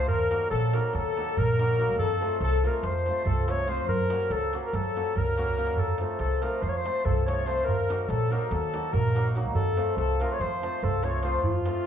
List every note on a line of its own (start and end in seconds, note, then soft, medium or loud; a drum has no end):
0.00 0.13 F3 medium
0.08 0.34 D#2 loud
0.08 0.48 A#4 loud
0.08 0.49 A#4 medium
0.08 darbuka dum medium
0.31 0.72 F#3 medium
0.31 0.45 A#3 medium
0.31 0.45 D#4 medium
0.31 0.46 F#4 medium
0.31 darbuka tek medium
0.41 darbuka tek soft
0.50 0.77 A#1 medium
0.50 0.76 A4 loud
0.50 0.76 A4 medium
0.50 darbuka tek medium
0.73 1.16 F#3 medium
0.73 0.88 A#3 medium
0.73 0.88 D#4 medium
0.73 0.89 F#4 medium
0.73 0.95 A#4 medium
0.73 0.97 A#4 medium
0.73 darbuka tek medium
0.84 darbuka tek soft
0.93 1.20 D#2 medium
0.93 1.39 A4 medium
0.93 1.40 A4 medium
0.93 darbuka tek medium
1.06 darbuka tek soft
1.17 1.58 F#3 soft
1.17 1.31 A#3 soft
1.17 1.32 D#4 soft
1.17 1.32 F#4 soft
1.17 darbuka tek medium
1.37 1.98 A#1 medium
1.37 1.97 A#4 loud
1.37 1.98 A#4 loud
1.37 darbuka dum medium
1.49 darbuka tek soft
1.59 1.78 F#3 medium
1.59 1.73 A#3 medium
1.59 1.73 D#4 medium
1.59 1.74 F#4 medium
1.59 darbuka tek medium
1.69 darbuka tek soft
1.79 2.03 F#3 medium
1.79 1.93 A#3 medium
1.79 1.93 D#4 medium
1.79 1.94 F#4 medium
1.79 darbuka tek medium
1.97 2.24 F2 loud
1.97 2.37 A4 medium
1.97 2.38 A4 loud
1.97 darbuka dum medium
2.21 2.63 F3 medium
2.21 2.35 A3 medium
2.21 2.36 C4 medium
2.21 2.36 F4 medium
2.21 darbuka tek medium
2.32 darbuka tek soft
2.40 2.66 C2 medium
2.40 2.65 A4 medium
2.40 2.68 A4 loud
2.40 darbuka tek medium
2.64 3.05 F3 medium
2.64 2.78 A3 medium
2.64 2.78 C4 medium
2.64 2.79 F4 medium
2.64 2.86 A#4 medium
2.64 2.88 A#4 medium
2.64 darbuka tek medium
2.83 3.09 F2 medium
2.83 3.25 C5 medium
2.83 3.28 C5 medium
2.83 darbuka tek medium
3.06 3.47 F3 medium
3.06 3.21 A3 medium
3.06 3.21 C4 medium
3.06 3.22 F4 medium
3.06 darbuka tek medium
3.25 3.87 C2 medium
3.25 3.50 A4 medium
3.25 3.52 A4 medium
3.25 darbuka dum medium
3.48 3.66 F3 medium
3.48 3.63 A3 medium
3.48 3.63 C4 medium
3.48 3.63 F4 medium
3.48 3.70 C#5 medium
3.48 3.71 C#5 loud
3.48 darbuka tek medium
3.58 darbuka tek soft
3.67 3.93 F3 medium
3.67 3.82 A3 medium
3.67 3.82 C4 medium
3.67 3.83 F4 medium
3.67 3.88 C5 medium
3.67 darbuka tek medium
3.79 darbuka tek soft
3.87 4.13 F#2 loud
3.87 4.34 A#4 medium
3.87 4.33 A#4 loud
3.87 darbuka dum medium
4.10 4.52 F#3 medium
4.10 4.25 A#3 soft
4.10 4.25 C#4 soft
4.10 4.26 F#4 medium
4.10 darbuka tek medium
4.21 darbuka tek soft
4.30 4.56 C#2 medium
4.30 4.54 A4 loud
4.30 4.54 A4 medium
4.30 darbuka tek medium
4.42 darbuka tek soft
4.53 4.94 F#3 medium
4.53 4.67 A#3 medium
4.53 4.68 C#4 medium
4.53 4.68 F#4 medium
4.53 darbuka tek medium
4.63 4.77 A#4 medium
4.63 4.75 A#4 medium
4.63 darbuka tek soft
4.73 4.99 F#2 medium
4.73 5.18 A4 medium
4.73 5.20 A4 medium
4.73 darbuka tek medium
4.73 darbuka dum medium
4.85 darbuka tek soft
4.95 5.36 F#3 medium
4.95 5.10 A#3 soft
4.95 5.11 C#4 medium
4.95 5.11 F#4 medium
4.95 darbuka tek medium
5.07 darbuka tek soft
5.16 5.76 C#2 medium
5.16 5.80 A#4 medium
5.16 5.81 A#4 loud
5.16 darbuka dum medium
5.27 darbuka tek soft
5.37 5.56 F#3 medium
5.37 5.52 A#3 medium
5.37 5.52 C#4 medium
5.37 5.52 F#4 medium
5.37 darbuka tek medium
5.48 darbuka dum medium
5.57 5.82 F#3 medium
5.57 5.72 A#3 medium
5.57 5.72 C#4 medium
5.57 5.72 F#4 medium
5.57 darbuka tek medium
5.67 darbuka tek medium
5.76 6.02 F2 loud
5.76 5.99 A4 medium
5.76 6.01 A4 medium
5.76 darbuka dum medium
5.98 6.41 F3 medium
5.98 6.14 A3 medium
5.98 6.14 C4 soft
5.98 6.15 F4 medium
5.98 6.18 A4 medium
5.98 6.19 A4 medium
5.98 darbuka tek medium
6.09 darbuka tek soft
6.19 6.45 C2 medium
6.19 6.44 A4 loud
6.19 6.45 A4 medium
6.19 darbuka tek medium
6.31 darbuka tek soft
6.42 6.83 F3 medium
6.42 6.57 A3 medium
6.42 6.57 C4 medium
6.42 6.57 F4 medium
6.42 6.64 A#4 medium
6.42 darbuka tek medium
6.62 6.88 F2 medium
6.62 6.72 C5 medium
6.62 6.70 C5 medium
6.62 darbuka tek medium
6.69 6.79 C#5 medium
6.75 7.07 C5 medium
6.75 darbuka tek soft
6.84 7.25 F3 soft
6.84 6.99 A3 soft
6.84 6.99 C4 soft
6.84 7.00 F4 medium
6.84 darbuka tek medium
7.05 7.66 C2 medium
7.05 7.25 A4 loud
7.05 7.26 A4 medium
7.05 darbuka dum medium
7.18 darbuka tek soft
7.26 7.45 F3 medium
7.26 7.41 A3 medium
7.26 7.41 C4 medium
7.26 7.41 F4 medium
7.26 7.47 C#5 medium
7.26 7.49 C#5 medium
7.26 darbuka tek medium
7.38 darbuka tek soft
7.45 7.71 F3 medium
7.45 7.60 A3 medium
7.45 7.61 C4 medium
7.45 7.61 F4 medium
7.45 7.66 C5 medium
7.45 7.68 C5 medium
7.45 darbuka tek medium
7.58 darbuka tek soft
7.65 7.92 D#2 loud
7.65 8.02 A#4 loud
7.65 8.02 A#4 medium
7.65 darbuka dum medium
7.89 8.29 F#3 medium
7.89 8.03 A#3 medium
7.89 8.03 D#4 medium
7.89 8.04 F#4 medium
7.89 darbuka tek medium
8.01 8.10 A#4 medium
8.01 darbuka tek soft
8.08 8.34 A#1 medium
8.08 8.33 A4 loud
8.08 8.33 A4 medium
8.08 darbuka tek medium
8.30 8.71 F#3 medium
8.30 8.45 A#3 medium
8.30 8.46 D#4 medium
8.30 8.46 F#4 medium
8.30 8.53 A#4 medium
8.30 8.54 A#4 medium
8.30 darbuka tek medium
8.42 darbuka tek soft
8.51 8.76 D#2 medium
8.51 8.94 A4 medium
8.51 8.96 A4 medium
8.51 darbuka tek medium
8.63 darbuka tek soft
8.73 9.13 F#3 medium
8.73 8.88 A#3 soft
8.73 8.88 D#4 soft
8.73 8.88 F#4 medium
8.73 darbuka tek medium
8.93 9.54 A#1 medium
8.93 9.29 A#4 loud
8.93 9.30 A#4 medium
8.93 darbuka dum medium
9.05 darbuka tek soft
9.14 9.34 F#3 medium
9.14 9.29 A#3 medium
9.14 9.29 D#4 medium
9.14 9.30 F#4 medium
9.14 darbuka tek medium
9.26 darbuka tek soft
9.35 9.59 F#3 medium
9.35 9.49 A#3 medium
9.35 9.50 D#4 medium
9.35 9.50 F#4 medium
9.35 darbuka tek medium
9.45 darbuka tek soft
9.54 9.80 F2 loud
9.54 9.94 A4 medium
9.54 9.94 A4 loud
9.54 darbuka dum medium
9.77 10.18 F3 medium
9.77 9.91 A3 medium
9.77 9.92 C4 medium
9.77 9.92 F4 medium
9.77 darbuka tek medium
9.89 darbuka tek soft
9.97 10.22 C2 medium
9.97 10.23 A4 medium
9.97 darbuka tek medium
10.10 darbuka tek soft
10.20 10.61 F3 medium
10.20 10.34 A3 medium
10.20 10.35 C4 medium
10.20 10.35 F4 medium
10.20 10.35 A#4 medium
10.20 10.34 A#4 medium
10.20 darbuka tek medium
10.31 10.41 C#5 medium
10.31 10.42 C#5 medium
10.31 darbuka tek soft
10.39 10.65 F2 medium
10.39 10.86 C5 medium
10.39 10.85 C5 medium
10.39 darbuka tek medium
10.51 darbuka tek soft
10.62 11.02 F3 medium
10.62 10.77 A3 soft
10.62 10.77 C4 medium
10.62 10.77 F4 medium
10.62 darbuka tek medium
10.82 11.43 C2 medium
10.82 11.06 A4 loud
10.82 11.06 A4 medium
10.82 darbuka dum medium
10.93 darbuka tek soft
11.03 11.22 F3 medium
11.03 11.18 A3 medium
11.03 11.18 C4 medium
11.03 11.19 F4 medium
11.03 11.27 C#5 medium
11.03 11.26 C#5 medium
11.03 darbuka tek medium
11.13 darbuka tek soft
11.23 11.48 F3 medium
11.23 11.38 A3 medium
11.23 11.38 C4 medium
11.23 11.38 F4 medium
11.23 11.43 C5 medium
11.23 11.44 C5 medium
11.23 darbuka tek medium
11.33 darbuka tek soft
11.43 11.69 F2 loud
11.43 11.87 F4 medium
11.43 darbuka dum medium
11.55 darbuka tek soft
11.66 11.87 F3 medium
11.66 11.80 A3 medium
11.66 11.81 C4 medium
11.66 11.81 F4 medium
11.66 darbuka tek medium
11.76 darbuka tek soft